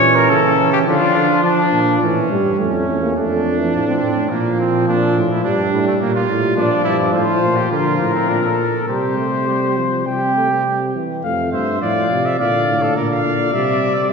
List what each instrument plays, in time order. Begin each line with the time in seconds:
Already playing: bass trombone A#2, trombone E3, trumpet C#4 C#5
0.15 trumpet A#4
0.29 bass trombone C#3, trumpet A4
0.73 trumpet G4
0.86 bass trombone D3, trombone F3, trumpet D4 F4
1.15 bass trombone D3
1.43 bass trombone F3, trumpet D4
1.72 bass trombone A#2
2.02 bass trombone A2, trombone E3, trumpet C#4
2.30 bass trombone G2, trombone G3
2.60 bass trombone F2, trombone A3, trumpet C#4
2.88 bass trombone E2
3.02 trombone A#3
3.16 bass trombone F2, trombone A3, trumpet D4
3.59 trombone E3
3.74 bass trombone A2, trombone F3
3.88 trombone C4
4.03 bass trombone A2
4.30 bass trombone A#2, trombone F3, trumpet A#3
4.60 trumpet C4
4.88 bass trombone A#2, trumpet D4
5.17 bass trombone A2
5.31 trumpet E4
5.45 bass trombone G2, trombone G3, trumpet D4
5.74 bass trombone A2
5.87 trumpet A3
6.01 bass trombone A#2, trombone G3, trumpet A#3
6.15 trumpet F4
6.29 bass trombone A2
6.56 bass trombone A#2, trombone F3, trumpet D4 D5
6.84 bass trombone G2, trumpet E4
7.13 bass trombone A2, trumpet F4 C5
7.43 bass trombone A#2
7.56 trumpet G4
7.71 bass trombone D3, trombone F3, trumpet F4 A#4
8.01 bass trombone A2
8.14 trumpet C4
8.29 bass trombone A#2, trumpet D4
8.43 trumpet A4
8.88 bass trombone C3, trombone G3, trumpet G4 C5
9.17 trombone A3
9.48 trombone G3
9.77 trombone F3
10.06 bass trombone C3, trombone G3, trumpet G4 G5
10.36 trombone A3
10.66 trombone G3
10.95 trombone E3
11.24 bass trombone F2, trombone A3, trumpet F5
11.53 bass trombone G2, trumpet C5 E5
11.81 bass trombone A2, trombone F3, trumpet D5 F5
12.11 bass trombone C3
12.26 trumpet E5
12.39 bass trombone A#2, trombone D3, trumpet D5 F5
12.68 bass trombone A2
12.83 trumpet A4
12.97 bass trombone A#2, trumpet A#4 D5
13.11 trumpet F5
13.25 bass trombone A#2
13.53 bass trombone C3, trombone G3, trumpet E5
13.95 trumpet D5
14.09 bass trombone C3, trombone G3